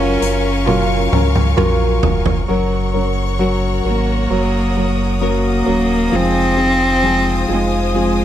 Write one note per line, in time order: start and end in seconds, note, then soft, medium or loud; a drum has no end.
0.00 0.18 F#1 loud
0.00 0.21 F#3 medium
0.00 2.46 F#3 medium
0.00 0.22 C#4 medium
0.00 1.60 C#4 medium
0.00 0.21 F4 medium
0.00 0.64 F4 soft
0.00 0.64 F#4 soft
0.00 0.19 A#4 loud
0.00 0.65 A#4 medium
0.00 2.45 A#4 medium
0.00 2.45 F5 medium
0.00 2.46 G#5 medium
0.00 2.45 C#6 medium
0.21 1.09 F#1 medium
0.21 0.66 C#4 medium
0.21 0.67 F4 medium
0.21 0.67 A#4 medium
0.21 closed hi-hat medium
0.66 1.12 F#3 medium
0.66 1.13 C#4 medium
0.66 1.55 F4 medium
0.66 1.12 F4 medium
0.66 1.55 F#4 soft
0.66 1.55 A#4 medium
0.66 1.11 A#4 medium
0.66 high tom medium
1.12 1.55 C#2 medium
1.12 1.56 C#4 soft
1.12 1.57 F4 medium
1.12 1.57 A#4 medium
1.12 mid tom medium
1.35 mid tom medium
1.57 2.00 A#1 medium
1.57 2.48 F#3 medium
1.57 2.48 C#4 medium
1.57 2.46 F4 medium
1.57 2.49 F4 loud
1.57 2.46 F#4 soft
1.57 2.46 A#4 medium
1.57 2.49 A#4 medium
1.57 mid tom medium
2.03 2.46 F1 medium
2.03 floor tom medium
2.26 floor tom medium
2.48 3.81 F#1 loud
2.48 2.94 F#3 medium
2.48 2.93 F#3 soft
2.48 2.94 C#4 medium
2.48 2.94 F#4 medium
2.48 6.09 A#4 medium
2.48 2.92 A#4 medium
2.48 6.09 C#5 medium
2.48 6.09 F#5 medium
2.48 4.28 C#6 medium
2.94 3.38 F#3 soft
2.94 3.38 C#4 soft
2.94 3.39 F#4 soft
2.94 3.39 A#4 soft
3.39 3.85 F#3 medium
3.39 3.84 F#3 soft
3.39 3.85 C#4 medium
3.39 3.84 F#4 medium
3.39 3.83 A#4 medium
3.85 4.27 G#1 medium
3.85 4.29 F#3 soft
3.85 5.18 A#3 medium
3.85 4.29 C#4 soft
3.85 4.30 F#4 soft
3.85 4.30 A#4 soft
4.29 5.63 F#1 medium
4.29 5.20 F#3 soft
4.29 4.75 F#3 medium
4.29 5.20 C#4 soft
4.29 5.21 F#4 medium
4.29 5.21 A#4 medium
4.29 8.25 D#6 medium
4.77 5.20 F#3 soft
5.21 5.67 F#3 medium
5.21 5.65 F#3 soft
5.21 6.17 A#3 medium
5.21 5.67 C#4 medium
5.21 5.66 F#4 medium
5.21 5.65 A#4 medium
5.66 6.10 D#1 medium
5.66 6.11 F#3 soft
5.66 6.12 C#4 soft
5.66 6.12 F#4 soft
5.66 6.12 A#4 soft
6.11 7.45 F1 loud
6.11 6.58 F3 medium
6.11 6.57 F3 medium
6.11 6.58 G#3 medium
6.11 6.58 C4 medium
6.11 7.54 C4 loud
6.11 6.57 D#4 medium
6.11 6.55 G#4 medium
6.11 8.25 C5 medium
6.11 8.25 F5 medium
6.11 8.25 G#5 medium
6.57 7.03 F3 soft
6.57 7.02 C4 soft
6.57 7.02 D#4 soft
6.57 7.02 G#4 soft
7.02 7.48 F3 medium
7.02 7.48 F3 soft
7.02 7.49 G#3 medium
7.02 7.48 C4 medium
7.02 7.48 D#4 medium
7.02 7.46 G#4 medium
7.48 8.25 F1 medium
7.48 7.94 F3 soft
7.48 7.94 C4 soft
7.48 7.95 D#4 soft
7.48 7.94 G#4 soft
7.52 8.25 G#3 medium
7.94 8.25 F3 medium
7.94 8.25 G#3 medium
7.94 8.25 C4 medium
7.94 8.25 D#4 soft
7.94 8.25 G#4 medium